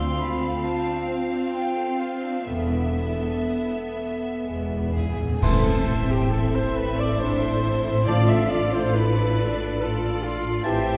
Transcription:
0.00 0.49 D2 medium
0.00 0.50 D2 medium
0.00 2.44 C4 medium
0.00 2.45 C4 medium
0.00 0.20 D4 medium
0.00 2.45 F4 medium
0.00 2.45 F5 medium
0.00 0.19 C6 medium
0.18 0.41 F4 medium
0.18 0.65 B5 medium
0.39 0.62 A4 soft
0.63 0.86 F4 medium
0.63 1.25 A5 medium
0.85 1.08 D4 medium
1.07 1.30 C4 soft
1.31 1.53 D4 medium
1.53 1.77 F4 soft
1.53 2.01 G5 medium
1.76 2.00 A4 soft
1.99 2.23 F4 soft
1.99 2.49 F5 medium
2.23 2.48 D4 soft
2.47 3.32 E1 medium
2.47 3.94 E2 medium
2.47 3.32 E2 medium
2.47 2.71 A3 medium
2.47 5.09 B3 soft
2.47 5.23 B3 medium
2.47 4.43 A4 medium
2.47 4.47 E5 medium
2.47 5.23 E5 medium
2.70 2.97 B3 soft
2.97 3.23 E4 soft
3.20 3.47 A4 soft
3.45 3.72 E4 soft
3.71 3.97 B3 soft
3.95 4.21 A3 soft
4.20 4.46 B3 soft
4.44 5.28 E1 medium
4.44 5.28 E2 medium
4.44 4.54 E2 soft
4.44 4.68 G#3 soft
4.44 5.09 G#4 soft
4.55 4.63 E2 soft
4.64 4.70 E2 soft
4.68 4.79 E2 soft
4.68 4.95 B3 soft
4.81 4.88 E2 soft
4.89 4.95 E2 soft
4.93 5.04 E2 medium
4.93 5.19 E4 soft
4.93 5.17 G#4 medium
4.93 5.44 G#4 medium
4.93 5.44 G#5 medium
5.05 5.13 E2 medium
5.14 5.21 E2 medium
5.18 5.28 E2 medium
5.18 5.42 G#4 medium
5.29 5.37 E2 medium
5.39 6.73 A2 medium
5.39 10.61 A2 medium
5.39 5.77 E3 medium
5.39 8.03 C4 medium
5.39 7.17 C4 medium
5.39 8.02 E4 medium
5.39 6.09 A4 medium
5.39 6.13 A4 medium
5.39 6.29 C5 medium
5.39 6.12 A5 medium
5.39 5.77 C6 medium
5.39 concert bass drum medium
5.39 crash medium
5.44 10.61 A1 medium
5.44 6.30 E5 medium
6.09 6.33 G4 medium
6.09 6.33 G5 medium
6.30 6.54 A4 medium
6.30 6.56 A4 medium
6.30 8.07 A4 medium
6.30 8.04 E5 medium
6.30 6.56 A5 medium
6.55 6.76 C5 medium
6.55 6.77 C5 medium
6.55 6.78 C6 medium
6.75 7.01 B4 medium
6.75 6.99 B4 medium
6.75 7.01 B5 medium
6.97 7.20 D5 medium
6.97 7.21 D5 medium
6.97 7.22 D6 medium
7.17 7.64 D4 medium
7.17 8.05 C5 medium
7.17 8.08 C5 medium
7.17 8.06 C6 medium
7.64 8.07 E4 medium
8.05 9.35 A2 medium
8.05 8.40 F3 medium
8.05 10.60 D4 medium
8.05 10.65 F4 medium
8.05 8.95 F4 medium
8.05 10.61 A4 medium
8.05 8.28 D5 medium
8.05 8.30 D5 medium
8.05 8.93 F5 medium
8.05 8.41 A5 medium
8.05 8.30 D6 medium
8.28 8.51 E5 medium
8.28 8.50 E5 medium
8.28 8.52 E6 medium
8.50 8.72 D5 medium
8.50 8.75 D5 medium
8.50 8.74 D6 medium
8.72 8.95 C5 medium
8.72 8.94 C5 medium
8.72 8.96 C6 medium
8.93 9.39 E4 medium
8.93 9.80 B4 medium
8.93 9.82 B4 loud
8.93 9.79 D5 medium
8.93 9.83 B5 medium
9.37 9.81 D4 medium
9.80 10.65 F4 medium
9.80 10.24 A4 medium
9.80 10.23 A4 medium
9.80 10.63 D5 medium
9.80 10.25 A5 medium
10.23 10.68 F4 medium
10.23 10.65 F4 medium
10.23 10.64 F5 medium
10.64 10.97 A1 medium
10.64 10.97 A2 medium
10.64 10.96 E3 medium
10.64 10.97 C4 medium
10.64 10.97 E4 medium
10.64 10.97 G4 medium
10.64 10.97 G4 loud
10.64 10.97 C5 medium
10.64 10.97 E5 medium
10.64 10.97 G5 medium
10.64 10.95 A5 medium

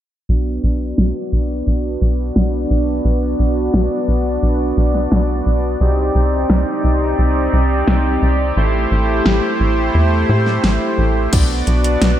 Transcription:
0.29 0.59 B1 loud
0.29 5.77 B3 medium
0.29 5.77 D4 medium
0.29 5.77 F#4 medium
0.29 8.53 D5 medium
0.64 0.94 B1 medium
0.98 1.13 B1 medium
0.98 snare loud
1.32 1.62 B1 medium
1.67 1.97 B1 medium
2.01 2.31 B1 loud
2.36 2.66 B1 loud
2.36 snare loud
2.70 3.00 B1 medium
3.05 3.35 B1 loud
3.39 3.69 B1 medium
3.74 3.89 B1 medium
3.74 snare loud
4.08 4.38 B1 medium
4.43 4.73 B1 medium
4.77 5.07 B1 loud
4.95 snare soft
5.12 5.42 B1 loud
5.12 snare loud
5.46 5.76 B1 medium
5.81 6.11 C2 loud
5.81 8.54 C4 medium
5.81 8.54 D#4 medium
5.81 11.29 G4 medium
6.15 6.45 C2 medium
6.50 6.65 C2 medium
6.50 snare loud
6.84 7.14 C2 medium
7.19 7.49 C2 medium
7.53 7.83 C2 loud
7.88 8.18 C2 loud
7.88 snare loud
8.22 8.52 C2 medium
8.57 8.87 A1 loud
8.57 11.30 A3 medium
8.57 11.30 E4 medium
8.57 11.30 C5 medium
8.91 9.21 A1 medium
9.26 9.41 A1 medium
9.26 snare loud
9.60 9.90 A1 medium
9.95 10.25 E2 medium
10.29 10.59 A2 loud
10.46 snare soft
10.64 10.79 A1 medium
10.64 snare loud
10.98 11.28 A1 medium
11.33 11.63 B1 loud
11.33 12.20 B3 medium
11.33 12.20 D4 medium
11.33 12.20 F#4 medium
11.33 12.20 D5 medium
11.33 kick loud
11.33 closed hi-hat medium
11.33 crash medium
11.67 11.97 B1 medium
11.67 closed hi-hat medium
11.84 closed hi-hat medium
12.02 12.17 B1 loud
12.02 snare loud
12.02 closed hi-hat loud

